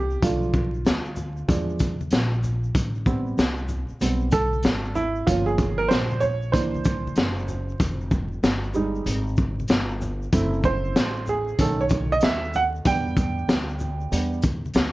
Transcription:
Already playing: C2 G4
0.11 shaker
0.22 B1 F3 A3 D4 F4, kick, closed hi-hat, shaker
0.43 shaker
0.54 kick, shaker
0.74 shaker
0.85 D2, snare, closed hi-hat, shaker
1.05 shaker
1.16 low conga, shaker
1.37 shaker
1.48 E2 F3 G#3 D4, kick, closed hi-hat, shaker
1.70 shaker
1.79 kick, closed hi-hat, shaker
2.01 high conga, shaker
2.11 A#1, snare, closed hi-hat, shaker
2.33 shaker
2.44 low conga, shaker
2.64 shaker
2.74 A1, kick, closed hi-hat, shaker
2.95 shaker
3.06 G3 B3 C4, kick, shaker
3.26 shaker
3.38 C2, snare, closed hi-hat, shaker
3.57 shaker
3.69 low conga, shaker
3.89 muted upright bass stroke, shaker
4.00 B1 G3 B3 C4, closed hi-hat, shaker
4.21 shaker
4.31 A4, kick, closed hi-hat, shaker
4.53 high conga, shaker
4.63 G#1, snare, closed hi-hat, shaker
4.85 shaker
4.95 E4, low conga, shaker
5.15 shaker
5.27 G1 F3 A#3 C#4 F4, kick, closed hi-hat, shaker
5.46 G#4, shaker
5.58 kick, closed hi-hat, shaker
5.78 A#4, shaker
5.89 A#1 C5, snare, closed hi-hat, shaker
6.11 high conga, shaker
6.20 C#5, high conga, low conga, shaker
6.23 shaker
6.42 shaker
6.52 C2 E3 A#3 D4 C5, kick, closed hi-hat, high conga, shaker
6.75 high conga, shaker
6.85 kick, closed hi-hat, shaker
6.86 shaker
7.05 muted upright bass stroke, high conga, shaker
7.16 F#1, snare, closed hi-hat, shaker
7.39 shaker
7.48 low conga, shaker
7.69 shaker
7.80 F1, kick, closed hi-hat, shaker
8.01 shaker
8.11 kick, shaker
8.32 shaker
8.43 G1, snare, closed hi-hat, shaker
8.63 shaker
8.74 G3 G#3 D#4, low conga, shaker
8.95 shaker
9.06 G#1, closed hi-hat, shaker
9.27 shaker
9.37 kick, shaker
9.40 shaker
9.60 high conga, shaker
9.68 G1, snare, closed hi-hat, shaker
9.91 shaker
10.01 low conga, shaker
10.22 shaker
10.33 F#1 A3 C4 E4, kick, closed hi-hat, shaker
10.53 shaker
10.64 C5, kick, shaker
10.85 shaker
10.96 A1, snare, closed hi-hat, shaker
11.16 shaker
11.26 G#4, low conga, shaker
11.48 shaker
11.59 B1 D#3 A3 C#4 A4, kick, closed hi-hat, shaker
11.80 C#5, shaker
11.89 kick, closed hi-hat, shaker
11.92 shaker
12.12 D#5, high conga, shaker
12.21 D#2 E5, snare, closed hi-hat, shaker
12.44 shaker
12.54 F#5, low conga, shaker
12.75 shaker
12.85 E2 G3 B3 D4 G5, kick, closed hi-hat, shaker
13.07 shaker
13.17 kick, closed hi-hat, shaker
13.19 shaker
13.38 shaker
13.48 D2, snare, closed hi-hat, shaker
13.69 shaker
13.79 low conga, shaker
13.81 shaker
14.01 shaker
14.12 E2 G3 B3 D4, closed hi-hat, shaker
14.33 shaker
14.42 kick, closed hi-hat, shaker
14.44 shaker
14.66 high conga, shaker
14.74 D2, snare, closed hi-hat, shaker

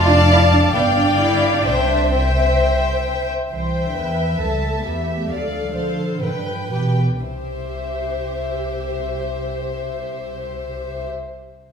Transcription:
Already playing: F1 D5 F5 A5
0.08 D4
0.30 E4
0.52 D4
0.74 G1 B3 D5 F5 G5
0.97 D4
1.19 E4
1.55 D4
1.66 C2 D4 C5 E5 G5
2.12 C4 C5 E5 G5
3.51 C2 E3 C5 E5 G5
3.85 D3
3.95 E2 E3 B4
4.30 F3
4.40 C#2 G3 A4 A5
4.74 A3
4.85 E2 B3 G4 E5
5.19 A3
5.29 D2 F3 A4 D5 F5
5.64 G3
5.75 D3 F3 A4 C5 F5
6.11 E3
6.22 G2 D3 B4 G5
6.46 F3
6.71 B2 E3 G4 B4 G5
7.10 D3
7.21 C2 C3 G4 C5 E5

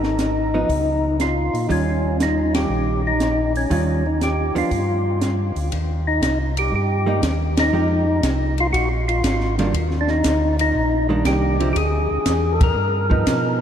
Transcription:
Already playing: G#1 D#4
0.03 snare
0.19 snare, closed hi-hat
0.54 F3 B3 D#4
0.69 C#2, kick, open hi-hat
1.20 F4, snare, closed hi-hat
1.54 A#2, open hi-hat
1.69 D#2 D#3 G3 C#4 F4, kick, open hi-hat
2.20 D#4, snare, closed hi-hat
2.55 G4, snare, ride
2.69 A#1
3.07 D#4
3.20 snare, closed hi-hat
3.56 C#4, open hi-hat
3.70 D#2 D#3 G3 C#4 F4, kick, open hi-hat
4.06 D#4
4.21 G4, snare, closed hi-hat
4.55 D#2 F3 B3 D4 F4, open hi-hat
4.71 G2, kick, open hi-hat
5.21 snare, closed hi-hat
5.56 D2, open hi-hat
5.72 D#2, kick, ride
6.07 D#4
6.22 C2 D#4, kick, snare, hi-hat pedal, ride
6.57 G4, ride
6.72 G2 G4, kick
7.06 G3 A#3 D#4
7.23 D#2, kick, snare, hi-hat pedal, ride
7.57 D#4, snare, ride
7.72 F2 F3 G#3 D#4 G4
8.23 C2, kick, snare, hi-hat pedal, ride
8.58 F4, ride
8.73 A#1 F#4, kick, ride
9.08 F4, ride
9.24 G#1, kick, snare, hi-hat pedal, ride
9.41 snare
9.58 D#3 G3 A#3 D4, snare, ride
9.73 D#2, kick, ride
9.91 snare
10.01 D4
10.08 D#4, snare
10.24 D2, kick, snare, hi-hat pedal, ride
10.59 D#4, ride
10.75 A#1, kick
11.09 D#3 G3 A#3 D4
11.25 C2 G4, kick, snare, hi-hat pedal, ride
11.60 D3 F3 C4 E4, ride
11.73 D2 G4, kick, ride
11.77 G#4
12.11 D2
12.26 E2, kick, snare, hi-hat pedal, ride
12.53 A4
12.61 A#4, kick, ride
12.76 G2
13.10 F3 B3 D#4, kick
13.26 B2, kick, snare, hi-hat pedal, ride

